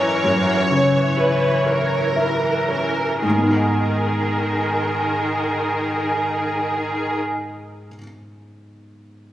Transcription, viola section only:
0.00 0.67 E3 soft
0.00 0.67 A#4 soft
0.70 2.14 E3 soft
0.70 2.14 C#5 soft
2.16 3.21 E3 soft
2.16 3.22 A#4 soft
3.24 7.17 D#3 soft
3.24 7.17 A#4 soft

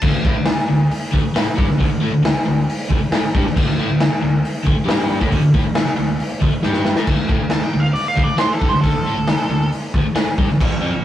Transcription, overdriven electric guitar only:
0.02 0.13 D3 medium
0.02 0.13 A3 loud
0.15 0.25 D3 medium
0.15 0.24 A3 medium
0.25 0.35 A3 medium
0.25 0.36 E4 loud
0.36 0.45 D3 medium
0.36 0.45 A3 medium
0.46 0.56 D3 medium
0.46 0.58 A3 medium
0.57 muted overdriven electric guitar stroke medium
0.68 0.86 D3 medium
0.68 0.86 A3 medium
1.11 1.23 D3 medium
1.11 1.23 A3 loud
1.24 muted overdriven electric guitar stroke medium
1.35 1.45 A3 loud
1.35 1.46 E4 medium
1.46 muted overdriven electric guitar stroke medium
1.56 1.67 G3 medium
1.56 1.67 D4 loud
1.68 1.77 D3 medium
1.68 1.77 A3 medium
1.78 1.89 D3 medium
1.78 1.88 A3 medium
1.90 2.01 D3 medium
1.90 1.99 A3 medium
2.00 2.10 A3 loud
2.00 2.12 E4 loud
2.11 2.22 D3 medium
2.11 2.22 A3 medium
2.23 2.34 D3 medium
2.23 2.35 A3 medium
2.35 muted overdriven electric guitar stroke medium
2.46 2.64 D3 medium
2.46 2.64 A3 medium
2.90 3.00 D3 medium
2.90 3.01 A3 loud
3.03 muted overdriven electric guitar stroke medium
3.14 3.23 A3 medium
3.14 3.23 E4 loud
3.25 muted overdriven electric guitar stroke medium
3.35 3.45 G3 medium
3.35 3.46 D4 medium
3.47 3.55 D3 medium
3.47 3.57 A3 medium
3.56 3.67 D3 loud
3.56 3.68 A3 loud
3.70 3.80 D3 medium
3.70 3.78 A3 medium
3.79 3.89 A3 loud
3.79 3.90 E4 loud
3.89 3.99 D3 medium
3.89 3.99 A3 medium
4.00 4.09 D3 medium
4.00 4.12 A3 medium
4.10 muted overdriven electric guitar stroke medium
4.22 4.40 D3 medium
4.22 4.40 A3 medium
4.63 4.75 D3 loud
4.63 4.76 A3 loud
4.77 muted overdriven electric guitar stroke medium
4.84 5.19 G3 medium
4.84 5.19 D4 medium
4.84 5.20 G4 loud
5.19 5.30 A3 medium
5.19 5.31 E4 loud
5.30 5.41 D3 medium
5.30 5.42 A3 loud
5.43 5.54 D3 medium
5.43 5.53 A3 medium
5.54 5.64 A3 loud
5.54 5.65 E4 loud
5.64 5.75 D3 medium
5.64 5.75 A3 medium
5.76 5.86 D3 medium
5.76 5.87 A3 medium
5.87 muted overdriven electric guitar stroke medium
5.97 6.15 D3 medium
5.97 6.16 A3 medium
6.41 6.50 D3 loud
6.41 6.53 A3 loud
6.52 muted overdriven electric guitar stroke medium
6.64 6.96 G3 medium
6.64 6.96 D4 medium
6.64 6.97 G4 loud
6.97 7.07 A3 medium
6.97 7.08 E4 loud
7.06 7.16 D3 loud
7.06 7.17 A3 loud
7.17 7.30 D3 medium
7.17 7.27 A3 medium
7.28 7.40 A3 medium
7.28 7.40 E4 loud
7.40 7.49 D3 medium
7.40 7.50 A3 medium
7.51 7.61 D3 medium
7.51 7.63 A3 medium
7.62 muted overdriven electric guitar stroke medium
7.74 7.92 D3 medium
7.74 7.92 A3 medium
8.16 8.26 D3 medium
8.16 8.28 A3 loud
8.27 muted overdriven electric guitar stroke medium
8.37 8.49 A3 medium
8.37 8.50 E4 medium
8.50 muted overdriven electric guitar stroke medium
8.62 8.73 G3 medium
8.62 8.73 D4 loud
8.73 8.81 D3 medium
8.73 8.83 A3 medium
8.82 8.94 D3 medium
8.82 8.94 A3 loud
8.95 9.07 D3 medium
8.95 9.05 A3 medium
9.07 9.17 A3 medium
9.07 9.18 E4 loud
9.18 9.29 D3 medium
9.18 9.29 A3 medium
9.31 9.41 D3 medium
9.31 9.41 A3 medium
9.42 muted overdriven electric guitar stroke medium
9.51 9.69 D3 medium
9.51 9.69 A3 medium
9.96 10.06 D3 loud
9.96 10.06 A3 loud
10.07 muted overdriven electric guitar stroke medium
10.15 10.26 A3 medium
10.15 10.27 E4 loud
10.29 muted overdriven electric guitar stroke medium
10.39 10.49 G3 medium
10.39 10.50 D4 loud
10.49 10.60 D3 medium
10.49 10.61 A3 medium
10.60 10.71 A#2 loud
10.60 10.70 F3 loud
10.71 10.80 A#2 medium
10.71 10.80 F3 medium
10.81 10.92 F3 loud
10.81 10.92 C4 loud
10.94 11.04 A#2 medium
10.94 11.05 F3 medium

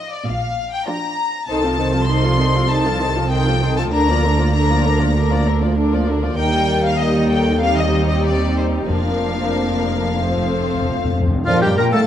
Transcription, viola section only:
0.00 0.11 F3 medium
0.00 0.11 D#4 medium
0.88 1.33 F3 medium
0.88 1.33 D4 medium
1.49 1.63 D#3 medium
1.49 1.63 D#4 medium
1.64 1.79 F3 soft
1.64 1.79 C4 soft
1.78 1.94 D#3 soft
1.78 1.93 D#4 soft
1.93 2.09 F3 soft
1.93 2.09 C4 soft
2.09 2.23 D#3 soft
2.09 2.23 D#4 soft
2.24 2.39 F3 soft
2.24 2.40 C4 soft
2.40 2.55 D#3 soft
2.40 2.55 D#4 medium
2.56 2.70 F3 soft
2.56 2.71 C4 soft
2.71 2.85 D#3 soft
2.71 2.85 D#4 medium
2.86 3.01 F3 soft
2.86 3.01 C4 soft
3.01 3.16 D#3 soft
3.01 3.16 D#4 soft
3.16 3.31 F3 soft
3.16 3.31 C4 soft
3.31 3.45 D#3 soft
3.31 3.45 D#4 soft
3.47 3.62 F3 soft
3.47 3.62 C4 soft
3.62 3.77 D#3 soft
3.62 3.77 D#4 soft
3.77 3.92 F3 soft
3.77 3.93 C4 soft
3.92 4.07 D3 medium
3.92 4.07 D4 medium
4.08 4.23 F3 soft
4.08 4.23 A#3 medium
4.24 4.39 D3 soft
4.24 4.39 D4 soft
4.38 4.54 F3 soft
4.38 4.54 A#3 soft
4.54 4.68 D3 medium
4.54 4.68 D4 soft
4.69 4.85 F3 soft
4.69 4.85 A#3 soft
4.84 5.00 D3 soft
4.84 5.00 D4 medium
5.00 5.15 F3 soft
5.00 5.15 A#3 soft
5.16 5.30 D3 medium
5.16 5.30 D4 medium
5.30 5.46 F3 soft
5.30 5.46 A#3 soft
5.46 5.62 D3 soft
5.46 5.62 D4 soft
5.61 5.77 F3 soft
5.61 5.77 A#3 soft
5.77 5.91 D3 soft
5.77 5.91 D4 soft
5.93 6.08 F3 soft
5.93 6.08 A#3 soft
6.08 6.23 D3 soft
6.08 6.23 D4 soft
6.24 6.39 F3 soft
6.24 6.38 A#3 soft
6.39 6.96 G3 medium
6.39 6.96 A#3 medium
6.99 7.60 G3 medium
6.99 7.60 A#3 medium
7.61 8.87 G3 medium
7.61 8.90 C4 medium
8.89 10.18 F3 soft
8.89 10.17 A#3 medium
10.19 11.24 F3 soft
10.19 11.26 A3 medium
11.47 12.05 A#4 medium

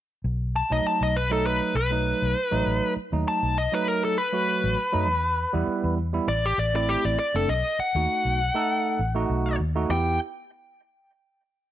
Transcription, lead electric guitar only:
0.56 0.71 A5 medium
0.72 0.85 D#5 medium
0.87 1.02 A5 medium
1.03 1.15 D#5 medium
1.16 1.32 B4 medium
1.32 1.45 A4 medium
1.46 1.75 B4 medium
1.77 2.93 B4 medium
3.28 3.56 A5 medium
3.58 3.73 D#5 medium
3.74 3.88 B4 medium
3.88 4.03 A#4 medium
4.05 4.18 A4 medium
4.18 5.94 B4 medium
6.28 6.44 D5 loud
6.46 6.58 G4 medium
6.59 6.74 D5 medium
6.76 6.88 D5 medium
6.89 7.04 G4 medium
7.05 7.18 D5 medium
7.19 7.35 D5 medium
7.36 7.48 A4 medium
7.49 7.78 D#5 medium
7.80 9.56 F#5 medium
9.91 10.18 G5 medium

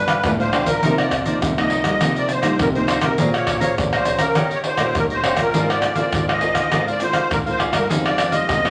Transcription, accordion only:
0.00 0.24 B4 medium
0.26 0.32 B4 loud
0.40 0.70 C5 medium
0.67 0.95 A#4 medium
0.99 1.25 D5 medium
1.26 1.40 D5 medium
1.59 1.84 D#5 medium
1.86 2.16 D#5 medium
2.18 2.32 D5 medium
2.31 2.58 C5 medium
2.61 2.67 A#4 medium
2.76 3.06 C5 medium
3.03 3.16 A#4 medium
3.35 3.60 C#5 medium
3.61 3.75 C#5 medium
3.94 4.21 C5 medium
4.20 4.49 A#4 medium
4.54 4.60 C#5 medium
4.67 4.97 C5 medium
4.99 5.05 A#4 medium
5.14 5.43 C5 medium
5.42 5.68 A#4 medium
5.73 5.97 D5 medium
5.98 6.26 D5 medium
6.32 6.57 D#5 medium
6.58 6.86 D#5 medium
6.90 7.03 D5 medium
7.02 7.32 C5 medium
7.32 7.39 A#4 medium
7.50 7.62 C5 medium
7.75 7.88 A#4 medium
8.05 8.36 D5 medium
8.32 8.70 D#5 medium

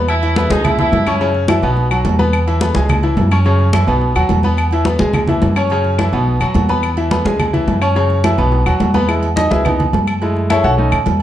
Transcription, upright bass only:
0.00 0.45 E2 loud
0.50 0.89 C#2 medium
0.92 1.57 F#2 medium
1.62 2.02 B1 medium
2.05 2.70 E2 medium
2.75 3.14 C#2 medium
3.17 3.82 F#2 loud
3.87 4.14 B1 medium
4.15 4.29 D#2 medium
4.29 4.94 E2 medium
5.00 5.39 C#2 medium
5.42 6.07 F#2 loud
6.13 6.39 B1 medium
6.41 6.54 D#2 medium
6.55 7.20 E2 medium
7.25 7.65 C#2 medium
7.67 8.33 F#2 medium
8.38 8.64 B1 medium
8.66 8.79 D#2 medium
8.80 9.45 E2 medium
9.51 9.90 C#2 medium
9.93 10.58 F#2 medium
10.63 10.90 B1 medium
10.92 11.05 D#2 medium
11.06 11.22 E2 loud

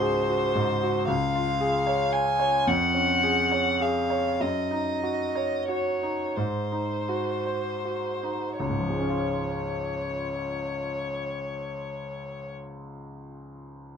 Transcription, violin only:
0.00 1.08 C5 medium
1.08 2.14 F5 medium
2.12 2.69 G#5 medium
2.67 3.84 F#5 medium
3.82 4.43 F5 medium
4.41 5.68 D#5 soft
5.69 6.38 C#5 soft
6.37 8.58 C5 soft
8.59 12.50 C#5 soft

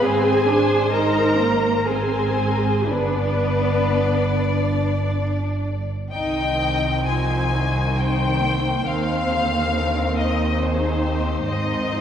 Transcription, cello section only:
0.03 0.46 C4 medium
0.47 0.93 D4 medium
0.93 1.38 D#4 medium
1.39 1.86 A#3 medium
1.86 2.89 C4 medium
2.89 5.57 D4 medium
6.12 8.83 C2 medium
8.86 11.43 D#2 medium
11.46 12.01 G#2 medium

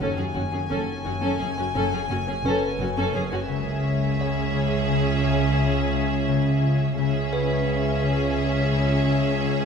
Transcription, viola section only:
0.01 0.17 C#4 medium
0.18 0.25 C#4 soft
0.36 0.43 C#4 soft
0.53 0.60 C#4 soft
0.70 0.86 C#4 soft
1.05 1.12 C#4 soft
1.22 1.39 C#4 medium
1.40 1.47 C#4 soft
1.58 1.65 C#4 soft
1.75 1.91 C#4 medium
1.93 2.00 C#4 medium
2.10 2.17 C#4 medium
2.27 2.34 C#4 soft
2.45 2.61 C#4 medium
2.80 2.87 C#4 soft
2.97 3.13 C#4 medium
3.14 3.21 C#4 medium
3.32 3.39 C#4 medium
3.49 6.94 C#4 medium
6.98 9.65 C#4 medium

